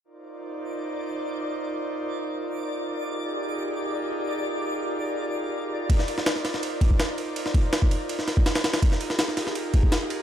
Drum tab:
RD |----------------|----------------|----------------|----------------|
SD |----------------|----------------|----------------|----------------|
BD |----------------|----------------|----------------|----------------|

RD |x-x-x-x-x-x-x-x-|x-x-x-x-x-x-xxxx|x-x-x-x-x-x-x-x-|
SD |-o-ooooo----o---|-o--o----oo-oooo|-o-ooooo----o---|
BD |o---------oo----|--o--o-----o----|o---------oo----|